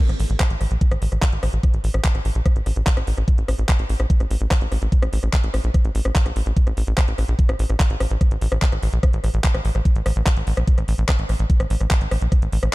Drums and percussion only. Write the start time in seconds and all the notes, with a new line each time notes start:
0.09 cross-stick, closed hi-hat
0.20 open hi-hat
0.30 closed hi-hat
0.40 kick, cross-stick, clap, closed hi-hat
0.50 closed hi-hat
0.61 cross-stick, open hi-hat
0.71 closed hi-hat
0.81 kick, closed hi-hat
0.91 cross-stick, closed hi-hat
1.02 open hi-hat
1.12 cross-stick, closed hi-hat
1.22 kick, clap, closed hi-hat
1.33 closed hi-hat
1.43 cross-stick, open hi-hat
1.53 closed hi-hat
1.63 kick, cross-stick, closed hi-hat
1.74 closed hi-hat
1.84 open hi-hat
1.94 cross-stick, closed hi-hat
2.04 kick, clap, closed hi-hat
2.15 cross-stick, closed hi-hat
2.25 open hi-hat
2.35 closed hi-hat
2.46 kick, cross-stick, closed hi-hat
2.56 closed hi-hat
2.66 cross-stick, open hi-hat
2.76 closed hi-hat
2.87 kick, clap, closed hi-hat
2.97 cross-stick, closed hi-hat
3.07 open hi-hat
3.18 cross-stick, closed hi-hat
3.28 kick, closed hi-hat
3.38 closed hi-hat
3.48 cross-stick, open hi-hat
3.59 closed hi-hat
3.69 kick, cross-stick, clap, closed hi-hat
3.79 closed hi-hat
3.89 open hi-hat
4.00 cross-stick, closed hi-hat
4.10 kick, closed hi-hat
4.20 cross-stick, closed hi-hat
4.31 open hi-hat
4.41 closed hi-hat
4.51 kick, cross-stick, clap, closed hi-hat
4.61 closed hi-hat
4.72 cross-stick, open hi-hat
4.82 closed hi-hat
4.92 kick, closed hi-hat
5.02 cross-stick, closed hi-hat
5.13 open hi-hat
5.23 cross-stick
5.33 kick, clap, closed hi-hat
5.44 closed hi-hat
5.54 cross-stick, open hi-hat
5.64 closed hi-hat
5.74 kick, cross-stick, closed hi-hat
5.85 closed hi-hat
5.95 open hi-hat
6.05 cross-stick, closed hi-hat
6.15 kick, clap, closed hi-hat
6.26 cross-stick, closed hi-hat
6.36 open hi-hat
6.46 closed hi-hat
6.57 kick, closed hi-hat
6.67 cross-stick, closed hi-hat
6.77 open hi-hat
6.87 closed hi-hat
6.98 kick, cross-stick, clap, closed hi-hat
7.08 closed hi-hat
7.18 cross-stick, open hi-hat
7.28 closed hi-hat
7.39 kick, closed hi-hat
7.49 cross-stick, closed hi-hat
7.59 open hi-hat
7.70 cross-stick, closed hi-hat
7.80 kick, clap, closed hi-hat
7.90 closed hi-hat
8.00 cross-stick, open hi-hat
8.11 closed hi-hat
8.21 kick, cross-stick, closed hi-hat
8.31 closed hi-hat
8.41 open hi-hat
8.52 cross-stick, closed hi-hat
8.62 kick, clap, closed hi-hat
8.72 cross-stick, closed hi-hat
8.83 open hi-hat
8.93 closed hi-hat
9.03 kick, cross-stick, closed hi-hat
9.13 closed hi-hat
9.24 cross-stick, open hi-hat
9.34 closed hi-hat
9.44 kick, clap, closed hi-hat
9.54 cross-stick, closed hi-hat
9.65 open hi-hat
9.75 cross-stick, closed hi-hat
9.85 kick, closed hi-hat
9.96 closed hi-hat
10.06 cross-stick, open hi-hat
10.16 closed hi-hat
10.26 kick, cross-stick, clap, closed hi-hat
10.37 closed hi-hat
10.47 open hi-hat
10.57 cross-stick, closed hi-hat
10.67 kick, closed hi-hat
10.78 cross-stick, closed hi-hat
10.88 open hi-hat
10.98 closed hi-hat
11.09 kick, cross-stick, clap, closed hi-hat
11.19 closed hi-hat
11.29 cross-stick, open hi-hat
11.39 closed hi-hat
11.50 kick, closed hi-hat
11.60 cross-stick, closed hi-hat
11.70 open hi-hat
11.81 cross-stick, closed hi-hat
11.91 kick, clap, closed hi-hat
12.01 closed hi-hat
12.11 cross-stick, open hi-hat
12.22 closed hi-hat
12.32 kick, cross-stick, closed hi-hat
12.42 closed hi-hat
12.52 open hi-hat
12.63 cross-stick, closed hi-hat